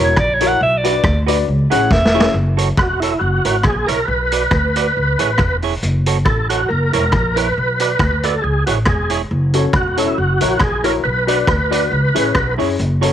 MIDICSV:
0, 0, Header, 1, 7, 480
1, 0, Start_track
1, 0, Tempo, 434783
1, 669, Time_signature, 4, 2, 24, 8
1, 14492, End_track
2, 0, Start_track
2, 0, Title_t, "Alto saxophone"
2, 0, Program_c, 0, 65
2, 46, Note_on_c, 0, 73, 103
2, 217, Note_on_c, 0, 74, 115
2, 233, Note_off_c, 0, 73, 0
2, 372, Note_on_c, 0, 73, 104
2, 388, Note_off_c, 0, 74, 0
2, 524, Note_on_c, 0, 78, 108
2, 541, Note_off_c, 0, 73, 0
2, 677, Note_off_c, 0, 78, 0
2, 692, Note_on_c, 0, 76, 127
2, 854, Note_on_c, 0, 74, 110
2, 871, Note_off_c, 0, 76, 0
2, 1321, Note_off_c, 0, 74, 0
2, 1890, Note_on_c, 0, 78, 106
2, 2120, Note_on_c, 0, 76, 113
2, 2137, Note_off_c, 0, 78, 0
2, 2593, Note_off_c, 0, 76, 0
2, 14492, End_track
3, 0, Start_track
3, 0, Title_t, "Clean electric guitar"
3, 0, Program_c, 1, 27
3, 450, Note_on_c, 1, 64, 85
3, 457, Note_on_c, 1, 70, 95
3, 457, Note_on_c, 1, 73, 100
3, 562, Note_off_c, 1, 64, 0
3, 565, Note_off_c, 1, 70, 0
3, 565, Note_off_c, 1, 73, 0
3, 926, Note_on_c, 1, 66, 97
3, 932, Note_on_c, 1, 71, 94
3, 942, Note_on_c, 1, 74, 89
3, 1039, Note_off_c, 1, 66, 0
3, 1042, Note_off_c, 1, 71, 0
3, 1047, Note_off_c, 1, 74, 0
3, 1395, Note_on_c, 1, 66, 91
3, 1404, Note_on_c, 1, 71, 93
3, 1414, Note_on_c, 1, 74, 97
3, 1514, Note_off_c, 1, 66, 0
3, 1518, Note_off_c, 1, 71, 0
3, 1523, Note_off_c, 1, 74, 0
3, 1879, Note_on_c, 1, 64, 87
3, 1885, Note_on_c, 1, 68, 93
3, 1891, Note_on_c, 1, 73, 97
3, 1995, Note_off_c, 1, 64, 0
3, 1998, Note_off_c, 1, 68, 0
3, 2001, Note_off_c, 1, 73, 0
3, 2364, Note_on_c, 1, 64, 82
3, 2368, Note_on_c, 1, 68, 84
3, 2374, Note_on_c, 1, 73, 103
3, 2477, Note_off_c, 1, 64, 0
3, 2480, Note_off_c, 1, 68, 0
3, 2482, Note_off_c, 1, 73, 0
3, 2838, Note_on_c, 1, 66, 83
3, 2842, Note_on_c, 1, 69, 90
3, 2851, Note_on_c, 1, 73, 92
3, 2954, Note_off_c, 1, 66, 0
3, 2957, Note_off_c, 1, 69, 0
3, 2961, Note_off_c, 1, 73, 0
3, 3333, Note_on_c, 1, 66, 75
3, 3339, Note_on_c, 1, 69, 90
3, 3342, Note_on_c, 1, 73, 81
3, 3441, Note_off_c, 1, 66, 0
3, 3445, Note_off_c, 1, 69, 0
3, 3446, Note_off_c, 1, 73, 0
3, 3806, Note_on_c, 1, 64, 74
3, 3814, Note_on_c, 1, 70, 93
3, 3821, Note_on_c, 1, 73, 90
3, 3918, Note_off_c, 1, 64, 0
3, 3922, Note_off_c, 1, 70, 0
3, 3925, Note_off_c, 1, 73, 0
3, 4283, Note_on_c, 1, 64, 79
3, 4289, Note_on_c, 1, 70, 89
3, 4294, Note_on_c, 1, 73, 83
3, 4397, Note_off_c, 1, 64, 0
3, 4400, Note_off_c, 1, 70, 0
3, 4402, Note_off_c, 1, 73, 0
3, 4773, Note_on_c, 1, 66, 75
3, 4782, Note_on_c, 1, 71, 78
3, 4784, Note_on_c, 1, 74, 79
3, 4882, Note_off_c, 1, 66, 0
3, 4886, Note_off_c, 1, 71, 0
3, 4887, Note_off_c, 1, 74, 0
3, 5255, Note_on_c, 1, 66, 84
3, 5263, Note_on_c, 1, 74, 93
3, 5264, Note_on_c, 1, 71, 87
3, 5363, Note_off_c, 1, 66, 0
3, 5367, Note_off_c, 1, 71, 0
3, 5367, Note_off_c, 1, 74, 0
3, 5730, Note_on_c, 1, 64, 82
3, 5731, Note_on_c, 1, 68, 90
3, 5740, Note_on_c, 1, 73, 93
3, 5840, Note_off_c, 1, 64, 0
3, 5841, Note_off_c, 1, 68, 0
3, 5845, Note_off_c, 1, 73, 0
3, 6215, Note_on_c, 1, 64, 88
3, 6223, Note_on_c, 1, 68, 83
3, 6228, Note_on_c, 1, 73, 94
3, 6323, Note_off_c, 1, 64, 0
3, 6327, Note_off_c, 1, 68, 0
3, 6330, Note_off_c, 1, 73, 0
3, 6698, Note_on_c, 1, 66, 87
3, 6701, Note_on_c, 1, 69, 87
3, 6707, Note_on_c, 1, 73, 87
3, 6805, Note_off_c, 1, 66, 0
3, 6806, Note_off_c, 1, 69, 0
3, 6809, Note_off_c, 1, 73, 0
3, 7173, Note_on_c, 1, 66, 85
3, 7176, Note_on_c, 1, 69, 96
3, 7180, Note_on_c, 1, 73, 100
3, 7282, Note_off_c, 1, 66, 0
3, 7284, Note_off_c, 1, 69, 0
3, 7286, Note_off_c, 1, 73, 0
3, 7648, Note_on_c, 1, 64, 81
3, 7659, Note_on_c, 1, 70, 94
3, 7660, Note_on_c, 1, 73, 94
3, 7760, Note_off_c, 1, 64, 0
3, 7765, Note_off_c, 1, 70, 0
3, 7766, Note_off_c, 1, 73, 0
3, 8126, Note_on_c, 1, 64, 89
3, 8138, Note_on_c, 1, 70, 104
3, 8140, Note_on_c, 1, 73, 88
3, 8239, Note_off_c, 1, 64, 0
3, 8245, Note_off_c, 1, 70, 0
3, 8246, Note_off_c, 1, 73, 0
3, 8614, Note_on_c, 1, 66, 82
3, 8622, Note_on_c, 1, 71, 91
3, 8626, Note_on_c, 1, 74, 96
3, 8723, Note_off_c, 1, 66, 0
3, 8727, Note_off_c, 1, 71, 0
3, 8730, Note_off_c, 1, 74, 0
3, 9095, Note_on_c, 1, 66, 77
3, 9101, Note_on_c, 1, 71, 91
3, 9104, Note_on_c, 1, 74, 103
3, 9204, Note_off_c, 1, 66, 0
3, 9207, Note_off_c, 1, 71, 0
3, 9209, Note_off_c, 1, 74, 0
3, 9573, Note_on_c, 1, 64, 70
3, 9577, Note_on_c, 1, 68, 82
3, 9582, Note_on_c, 1, 73, 93
3, 9683, Note_off_c, 1, 64, 0
3, 9685, Note_off_c, 1, 68, 0
3, 9688, Note_off_c, 1, 73, 0
3, 10048, Note_on_c, 1, 64, 79
3, 10057, Note_on_c, 1, 68, 85
3, 10059, Note_on_c, 1, 73, 84
3, 10161, Note_off_c, 1, 64, 0
3, 10165, Note_off_c, 1, 68, 0
3, 10166, Note_off_c, 1, 73, 0
3, 10530, Note_on_c, 1, 66, 71
3, 10541, Note_on_c, 1, 69, 86
3, 10545, Note_on_c, 1, 73, 79
3, 10642, Note_off_c, 1, 66, 0
3, 10647, Note_off_c, 1, 69, 0
3, 10650, Note_off_c, 1, 73, 0
3, 11006, Note_on_c, 1, 66, 75
3, 11015, Note_on_c, 1, 69, 98
3, 11019, Note_on_c, 1, 73, 90
3, 11120, Note_off_c, 1, 66, 0
3, 11125, Note_off_c, 1, 69, 0
3, 11127, Note_off_c, 1, 73, 0
3, 11490, Note_on_c, 1, 64, 79
3, 11495, Note_on_c, 1, 70, 84
3, 11501, Note_on_c, 1, 73, 78
3, 11602, Note_off_c, 1, 64, 0
3, 11605, Note_off_c, 1, 70, 0
3, 11608, Note_off_c, 1, 73, 0
3, 11967, Note_on_c, 1, 64, 80
3, 11978, Note_on_c, 1, 70, 91
3, 11985, Note_on_c, 1, 73, 94
3, 12081, Note_off_c, 1, 64, 0
3, 12086, Note_off_c, 1, 70, 0
3, 12090, Note_off_c, 1, 73, 0
3, 12446, Note_on_c, 1, 66, 94
3, 12456, Note_on_c, 1, 71, 89
3, 12463, Note_on_c, 1, 74, 108
3, 12561, Note_off_c, 1, 66, 0
3, 12566, Note_off_c, 1, 71, 0
3, 12569, Note_off_c, 1, 74, 0
3, 12930, Note_on_c, 1, 66, 92
3, 12939, Note_on_c, 1, 74, 94
3, 12941, Note_on_c, 1, 71, 96
3, 13043, Note_off_c, 1, 66, 0
3, 13047, Note_off_c, 1, 74, 0
3, 13048, Note_off_c, 1, 71, 0
3, 13408, Note_on_c, 1, 64, 87
3, 13415, Note_on_c, 1, 68, 85
3, 13421, Note_on_c, 1, 73, 100
3, 13522, Note_off_c, 1, 64, 0
3, 13526, Note_off_c, 1, 68, 0
3, 13529, Note_off_c, 1, 73, 0
3, 13887, Note_on_c, 1, 64, 82
3, 13893, Note_on_c, 1, 68, 80
3, 13896, Note_on_c, 1, 73, 85
3, 14002, Note_off_c, 1, 64, 0
3, 14005, Note_off_c, 1, 68, 0
3, 14006, Note_off_c, 1, 73, 0
3, 14367, Note_on_c, 1, 66, 88
3, 14373, Note_on_c, 1, 69, 79
3, 14373, Note_on_c, 1, 73, 85
3, 14482, Note_off_c, 1, 66, 0
3, 14485, Note_off_c, 1, 69, 0
3, 14485, Note_off_c, 1, 73, 0
3, 14492, End_track
4, 0, Start_track
4, 0, Title_t, "Tonewheel organ"
4, 0, Program_c, 2, 16
4, 3066, Note_on_c, 2, 66, 87
4, 3311, Note_on_c, 2, 64, 81
4, 3312, Note_off_c, 2, 66, 0
4, 3523, Note_on_c, 2, 66, 88
4, 3543, Note_off_c, 2, 64, 0
4, 4008, Note_on_c, 2, 68, 97
4, 4029, Note_off_c, 2, 66, 0
4, 4267, Note_on_c, 2, 70, 100
4, 4289, Note_off_c, 2, 68, 0
4, 4473, Note_on_c, 2, 71, 102
4, 4501, Note_off_c, 2, 70, 0
4, 6150, Note_off_c, 2, 71, 0
4, 6899, Note_on_c, 2, 69, 89
4, 7149, Note_off_c, 2, 69, 0
4, 7169, Note_on_c, 2, 66, 78
4, 7379, Note_on_c, 2, 70, 103
4, 7392, Note_off_c, 2, 66, 0
4, 7641, Note_off_c, 2, 70, 0
4, 7654, Note_on_c, 2, 70, 100
4, 8125, Note_on_c, 2, 71, 111
4, 8148, Note_off_c, 2, 70, 0
4, 8606, Note_off_c, 2, 71, 0
4, 8619, Note_on_c, 2, 71, 118
4, 9094, Note_on_c, 2, 69, 81
4, 9110, Note_off_c, 2, 71, 0
4, 9291, Note_on_c, 2, 68, 93
4, 9316, Note_off_c, 2, 69, 0
4, 9545, Note_off_c, 2, 68, 0
4, 9564, Note_on_c, 2, 66, 78
4, 9663, Note_off_c, 2, 66, 0
4, 9781, Note_on_c, 2, 68, 81
4, 10131, Note_off_c, 2, 68, 0
4, 10773, Note_on_c, 2, 66, 87
4, 11028, Note_on_c, 2, 64, 78
4, 11033, Note_off_c, 2, 66, 0
4, 11236, Note_on_c, 2, 66, 91
4, 11243, Note_off_c, 2, 64, 0
4, 11708, Note_on_c, 2, 68, 96
4, 11728, Note_off_c, 2, 66, 0
4, 11963, Note_on_c, 2, 70, 105
4, 11981, Note_off_c, 2, 68, 0
4, 12063, Note_off_c, 2, 70, 0
4, 12184, Note_on_c, 2, 71, 102
4, 13849, Note_off_c, 2, 71, 0
4, 14492, End_track
5, 0, Start_track
5, 0, Title_t, "Upright piano"
5, 0, Program_c, 3, 0
5, 0, Note_on_c, 3, 64, 93
5, 0, Note_on_c, 3, 66, 88
5, 0, Note_on_c, 3, 70, 87
5, 0, Note_on_c, 3, 73, 113
5, 134, Note_off_c, 3, 64, 0
5, 135, Note_off_c, 3, 66, 0
5, 139, Note_off_c, 3, 70, 0
5, 141, Note_off_c, 3, 73, 0
5, 454, Note_on_c, 3, 64, 101
5, 459, Note_on_c, 3, 66, 93
5, 461, Note_on_c, 3, 70, 92
5, 467, Note_on_c, 3, 73, 111
5, 615, Note_off_c, 3, 64, 0
5, 618, Note_off_c, 3, 66, 0
5, 619, Note_off_c, 3, 70, 0
5, 622, Note_off_c, 3, 73, 0
5, 927, Note_on_c, 3, 62, 95
5, 934, Note_on_c, 3, 66, 91
5, 939, Note_on_c, 3, 71, 82
5, 945, Note_on_c, 3, 74, 108
5, 1092, Note_off_c, 3, 62, 0
5, 1095, Note_off_c, 3, 66, 0
5, 1097, Note_off_c, 3, 71, 0
5, 1100, Note_off_c, 3, 74, 0
5, 1411, Note_on_c, 3, 62, 97
5, 1417, Note_on_c, 3, 66, 86
5, 1420, Note_on_c, 3, 71, 87
5, 1424, Note_on_c, 3, 74, 109
5, 1573, Note_off_c, 3, 62, 0
5, 1576, Note_off_c, 3, 66, 0
5, 1578, Note_off_c, 3, 71, 0
5, 1580, Note_off_c, 3, 74, 0
5, 1636, Note_on_c, 3, 68, 26
5, 1637, Note_on_c, 3, 73, 28
5, 1684, Note_off_c, 3, 68, 0
5, 1685, Note_off_c, 3, 73, 0
5, 1894, Note_on_c, 3, 61, 98
5, 1896, Note_on_c, 3, 64, 85
5, 1903, Note_on_c, 3, 68, 93
5, 1907, Note_on_c, 3, 73, 105
5, 2055, Note_off_c, 3, 61, 0
5, 2056, Note_off_c, 3, 64, 0
5, 2059, Note_off_c, 3, 68, 0
5, 2061, Note_off_c, 3, 73, 0
5, 2369, Note_on_c, 3, 61, 97
5, 2373, Note_on_c, 3, 64, 96
5, 2375, Note_on_c, 3, 68, 90
5, 2382, Note_on_c, 3, 73, 113
5, 2531, Note_off_c, 3, 61, 0
5, 2534, Note_off_c, 3, 64, 0
5, 2535, Note_off_c, 3, 68, 0
5, 2538, Note_off_c, 3, 73, 0
5, 10531, Note_on_c, 3, 61, 82
5, 10537, Note_on_c, 3, 66, 78
5, 10540, Note_on_c, 3, 69, 73
5, 10548, Note_on_c, 3, 73, 100
5, 10694, Note_off_c, 3, 61, 0
5, 10698, Note_off_c, 3, 66, 0
5, 10699, Note_off_c, 3, 69, 0
5, 10702, Note_off_c, 3, 73, 0
5, 11007, Note_on_c, 3, 61, 89
5, 11010, Note_on_c, 3, 66, 87
5, 11015, Note_on_c, 3, 69, 79
5, 11021, Note_on_c, 3, 73, 91
5, 11173, Note_off_c, 3, 61, 0
5, 11174, Note_off_c, 3, 66, 0
5, 11176, Note_off_c, 3, 69, 0
5, 11179, Note_off_c, 3, 73, 0
5, 11488, Note_on_c, 3, 64, 91
5, 11492, Note_on_c, 3, 66, 79
5, 11498, Note_on_c, 3, 70, 85
5, 11503, Note_on_c, 3, 73, 106
5, 11653, Note_off_c, 3, 64, 0
5, 11655, Note_off_c, 3, 66, 0
5, 11658, Note_off_c, 3, 70, 0
5, 11661, Note_off_c, 3, 73, 0
5, 11969, Note_on_c, 3, 64, 97
5, 11973, Note_on_c, 3, 66, 87
5, 11976, Note_on_c, 3, 70, 88
5, 11979, Note_on_c, 3, 73, 100
5, 12134, Note_off_c, 3, 64, 0
5, 12136, Note_off_c, 3, 66, 0
5, 12137, Note_off_c, 3, 70, 0
5, 12139, Note_off_c, 3, 73, 0
5, 12444, Note_on_c, 3, 62, 96
5, 12447, Note_on_c, 3, 66, 82
5, 12456, Note_on_c, 3, 71, 82
5, 12457, Note_on_c, 3, 74, 98
5, 12612, Note_off_c, 3, 62, 0
5, 12613, Note_off_c, 3, 66, 0
5, 12618, Note_off_c, 3, 71, 0
5, 12618, Note_off_c, 3, 74, 0
5, 12921, Note_on_c, 3, 66, 91
5, 12922, Note_on_c, 3, 62, 89
5, 12927, Note_on_c, 3, 71, 88
5, 12933, Note_on_c, 3, 74, 98
5, 13090, Note_off_c, 3, 66, 0
5, 13091, Note_off_c, 3, 62, 0
5, 13093, Note_off_c, 3, 71, 0
5, 13096, Note_off_c, 3, 74, 0
5, 13148, Note_on_c, 3, 73, 25
5, 13150, Note_on_c, 3, 68, 23
5, 13203, Note_off_c, 3, 68, 0
5, 13203, Note_off_c, 3, 73, 0
5, 13412, Note_on_c, 3, 61, 88
5, 13413, Note_on_c, 3, 64, 84
5, 13419, Note_on_c, 3, 68, 80
5, 13423, Note_on_c, 3, 73, 105
5, 13576, Note_off_c, 3, 61, 0
5, 13576, Note_off_c, 3, 64, 0
5, 13580, Note_off_c, 3, 68, 0
5, 13582, Note_off_c, 3, 73, 0
5, 13891, Note_on_c, 3, 61, 89
5, 13897, Note_on_c, 3, 64, 84
5, 13898, Note_on_c, 3, 68, 85
5, 13903, Note_on_c, 3, 73, 99
5, 14056, Note_off_c, 3, 61, 0
5, 14059, Note_off_c, 3, 64, 0
5, 14059, Note_off_c, 3, 68, 0
5, 14061, Note_off_c, 3, 73, 0
5, 14375, Note_on_c, 3, 61, 85
5, 14379, Note_on_c, 3, 66, 81
5, 14382, Note_on_c, 3, 69, 86
5, 14384, Note_on_c, 3, 73, 94
5, 14492, Note_off_c, 3, 61, 0
5, 14492, Note_off_c, 3, 66, 0
5, 14492, Note_off_c, 3, 69, 0
5, 14492, Note_off_c, 3, 73, 0
5, 14492, End_track
6, 0, Start_track
6, 0, Title_t, "Upright bass"
6, 0, Program_c, 4, 32
6, 0, Note_on_c, 4, 28, 109
6, 157, Note_off_c, 4, 28, 0
6, 196, Note_on_c, 4, 34, 93
6, 601, Note_off_c, 4, 34, 0
6, 670, Note_on_c, 4, 35, 113
6, 1077, Note_off_c, 4, 35, 0
6, 1149, Note_on_c, 4, 38, 106
6, 1556, Note_off_c, 4, 38, 0
6, 1634, Note_on_c, 4, 37, 102
6, 1855, Note_off_c, 4, 37, 0
6, 1895, Note_on_c, 4, 33, 98
6, 2077, Note_off_c, 4, 33, 0
6, 2110, Note_on_c, 4, 28, 103
6, 2516, Note_off_c, 4, 28, 0
6, 2585, Note_on_c, 4, 30, 120
6, 2993, Note_off_c, 4, 30, 0
6, 3069, Note_on_c, 4, 28, 94
6, 3475, Note_off_c, 4, 28, 0
6, 3545, Note_on_c, 4, 30, 99
6, 3770, Note_off_c, 4, 30, 0
6, 3810, Note_on_c, 4, 32, 88
6, 3993, Note_off_c, 4, 32, 0
6, 4030, Note_on_c, 4, 34, 102
6, 4252, Note_off_c, 4, 34, 0
6, 4295, Note_on_c, 4, 35, 96
6, 4476, Note_off_c, 4, 35, 0
6, 4505, Note_on_c, 4, 35, 103
6, 4914, Note_off_c, 4, 35, 0
6, 4984, Note_on_c, 4, 38, 100
6, 5393, Note_off_c, 4, 38, 0
6, 5484, Note_on_c, 4, 37, 90
6, 5701, Note_off_c, 4, 37, 0
6, 5747, Note_on_c, 4, 33, 88
6, 5923, Note_off_c, 4, 33, 0
6, 5955, Note_on_c, 4, 28, 93
6, 6360, Note_off_c, 4, 28, 0
6, 6433, Note_on_c, 4, 30, 110
6, 6913, Note_off_c, 4, 30, 0
6, 6913, Note_on_c, 4, 33, 88
6, 7319, Note_off_c, 4, 33, 0
6, 7399, Note_on_c, 4, 30, 101
6, 7619, Note_off_c, 4, 30, 0
6, 7668, Note_on_c, 4, 28, 101
6, 7844, Note_off_c, 4, 28, 0
6, 7875, Note_on_c, 4, 34, 104
6, 8280, Note_off_c, 4, 34, 0
6, 8364, Note_on_c, 4, 35, 97
6, 8765, Note_off_c, 4, 35, 0
6, 8828, Note_on_c, 4, 38, 94
6, 9236, Note_off_c, 4, 38, 0
6, 9316, Note_on_c, 4, 37, 96
6, 9537, Note_off_c, 4, 37, 0
6, 9589, Note_on_c, 4, 33, 92
6, 9766, Note_off_c, 4, 33, 0
6, 9797, Note_on_c, 4, 28, 102
6, 10202, Note_off_c, 4, 28, 0
6, 10278, Note_on_c, 4, 30, 109
6, 10683, Note_off_c, 4, 30, 0
6, 10750, Note_on_c, 4, 28, 91
6, 11158, Note_off_c, 4, 28, 0
6, 11238, Note_on_c, 4, 30, 92
6, 11460, Note_off_c, 4, 30, 0
6, 11506, Note_on_c, 4, 34, 95
6, 11685, Note_off_c, 4, 34, 0
6, 11711, Note_on_c, 4, 34, 89
6, 12119, Note_off_c, 4, 34, 0
6, 12199, Note_on_c, 4, 35, 109
6, 12604, Note_off_c, 4, 35, 0
6, 12673, Note_on_c, 4, 38, 93
6, 13080, Note_off_c, 4, 38, 0
6, 13151, Note_on_c, 4, 37, 100
6, 13376, Note_off_c, 4, 37, 0
6, 13422, Note_on_c, 4, 33, 89
6, 13603, Note_off_c, 4, 33, 0
6, 13638, Note_on_c, 4, 35, 108
6, 13860, Note_off_c, 4, 35, 0
6, 13903, Note_on_c, 4, 42, 91
6, 14084, Note_off_c, 4, 42, 0
6, 14125, Note_on_c, 4, 30, 106
6, 14492, Note_off_c, 4, 30, 0
6, 14492, End_track
7, 0, Start_track
7, 0, Title_t, "Drums"
7, 182, Note_on_c, 9, 37, 103
7, 190, Note_on_c, 9, 36, 103
7, 292, Note_off_c, 9, 37, 0
7, 300, Note_off_c, 9, 36, 0
7, 446, Note_on_c, 9, 42, 89
7, 557, Note_off_c, 9, 42, 0
7, 931, Note_on_c, 9, 42, 100
7, 1042, Note_off_c, 9, 42, 0
7, 1144, Note_on_c, 9, 36, 126
7, 1148, Note_on_c, 9, 37, 127
7, 1255, Note_off_c, 9, 36, 0
7, 1259, Note_off_c, 9, 37, 0
7, 1413, Note_on_c, 9, 42, 93
7, 1523, Note_off_c, 9, 42, 0
7, 1891, Note_on_c, 9, 42, 94
7, 2001, Note_off_c, 9, 42, 0
7, 2105, Note_on_c, 9, 36, 111
7, 2109, Note_on_c, 9, 38, 59
7, 2216, Note_off_c, 9, 36, 0
7, 2220, Note_off_c, 9, 38, 0
7, 2268, Note_on_c, 9, 38, 83
7, 2379, Note_off_c, 9, 38, 0
7, 2434, Note_on_c, 9, 38, 113
7, 2544, Note_off_c, 9, 38, 0
7, 2852, Note_on_c, 9, 42, 88
7, 2963, Note_off_c, 9, 42, 0
7, 3063, Note_on_c, 9, 36, 120
7, 3078, Note_on_c, 9, 37, 121
7, 3173, Note_off_c, 9, 36, 0
7, 3188, Note_off_c, 9, 37, 0
7, 3332, Note_on_c, 9, 42, 82
7, 3442, Note_off_c, 9, 42, 0
7, 3805, Note_on_c, 9, 42, 87
7, 3915, Note_off_c, 9, 42, 0
7, 4013, Note_on_c, 9, 37, 101
7, 4024, Note_on_c, 9, 36, 99
7, 4123, Note_off_c, 9, 37, 0
7, 4134, Note_off_c, 9, 36, 0
7, 4286, Note_on_c, 9, 42, 82
7, 4397, Note_off_c, 9, 42, 0
7, 4765, Note_on_c, 9, 42, 91
7, 4876, Note_off_c, 9, 42, 0
7, 4978, Note_on_c, 9, 37, 121
7, 4981, Note_on_c, 9, 36, 119
7, 5088, Note_off_c, 9, 37, 0
7, 5092, Note_off_c, 9, 36, 0
7, 5251, Note_on_c, 9, 42, 82
7, 5361, Note_off_c, 9, 42, 0
7, 5729, Note_on_c, 9, 42, 93
7, 5839, Note_off_c, 9, 42, 0
7, 5938, Note_on_c, 9, 37, 100
7, 5950, Note_on_c, 9, 36, 100
7, 6048, Note_off_c, 9, 37, 0
7, 6060, Note_off_c, 9, 36, 0
7, 6206, Note_on_c, 9, 46, 49
7, 6317, Note_off_c, 9, 46, 0
7, 6426, Note_on_c, 9, 44, 66
7, 6537, Note_off_c, 9, 44, 0
7, 6692, Note_on_c, 9, 42, 100
7, 6802, Note_off_c, 9, 42, 0
7, 6906, Note_on_c, 9, 37, 119
7, 6907, Note_on_c, 9, 36, 121
7, 7017, Note_off_c, 9, 36, 0
7, 7017, Note_off_c, 9, 37, 0
7, 7172, Note_on_c, 9, 42, 87
7, 7283, Note_off_c, 9, 42, 0
7, 7652, Note_on_c, 9, 42, 81
7, 7763, Note_off_c, 9, 42, 0
7, 7862, Note_on_c, 9, 37, 100
7, 7870, Note_on_c, 9, 36, 93
7, 7972, Note_off_c, 9, 37, 0
7, 7981, Note_off_c, 9, 36, 0
7, 8132, Note_on_c, 9, 42, 81
7, 8243, Note_off_c, 9, 42, 0
7, 8606, Note_on_c, 9, 42, 101
7, 8717, Note_off_c, 9, 42, 0
7, 8826, Note_on_c, 9, 36, 114
7, 8829, Note_on_c, 9, 37, 118
7, 8936, Note_off_c, 9, 36, 0
7, 8939, Note_off_c, 9, 37, 0
7, 9089, Note_on_c, 9, 42, 85
7, 9199, Note_off_c, 9, 42, 0
7, 9568, Note_on_c, 9, 42, 89
7, 9678, Note_off_c, 9, 42, 0
7, 9776, Note_on_c, 9, 37, 113
7, 9789, Note_on_c, 9, 36, 101
7, 9887, Note_off_c, 9, 37, 0
7, 9899, Note_off_c, 9, 36, 0
7, 10043, Note_on_c, 9, 42, 77
7, 10153, Note_off_c, 9, 42, 0
7, 10527, Note_on_c, 9, 42, 97
7, 10637, Note_off_c, 9, 42, 0
7, 10745, Note_on_c, 9, 36, 113
7, 10745, Note_on_c, 9, 37, 123
7, 10855, Note_off_c, 9, 37, 0
7, 10856, Note_off_c, 9, 36, 0
7, 11010, Note_on_c, 9, 42, 90
7, 11121, Note_off_c, 9, 42, 0
7, 11487, Note_on_c, 9, 42, 96
7, 11598, Note_off_c, 9, 42, 0
7, 11697, Note_on_c, 9, 37, 109
7, 11707, Note_on_c, 9, 36, 110
7, 11807, Note_off_c, 9, 37, 0
7, 11818, Note_off_c, 9, 36, 0
7, 11967, Note_on_c, 9, 42, 78
7, 12077, Note_off_c, 9, 42, 0
7, 12454, Note_on_c, 9, 42, 97
7, 12564, Note_off_c, 9, 42, 0
7, 12668, Note_on_c, 9, 36, 114
7, 12675, Note_on_c, 9, 37, 116
7, 12778, Note_off_c, 9, 36, 0
7, 12785, Note_off_c, 9, 37, 0
7, 12941, Note_on_c, 9, 42, 92
7, 13052, Note_off_c, 9, 42, 0
7, 13418, Note_on_c, 9, 42, 90
7, 13529, Note_off_c, 9, 42, 0
7, 13631, Note_on_c, 9, 37, 117
7, 13634, Note_on_c, 9, 36, 96
7, 13741, Note_off_c, 9, 37, 0
7, 13744, Note_off_c, 9, 36, 0
7, 13904, Note_on_c, 9, 46, 53
7, 14014, Note_off_c, 9, 46, 0
7, 14117, Note_on_c, 9, 44, 64
7, 14227, Note_off_c, 9, 44, 0
7, 14379, Note_on_c, 9, 42, 107
7, 14490, Note_off_c, 9, 42, 0
7, 14492, End_track
0, 0, End_of_file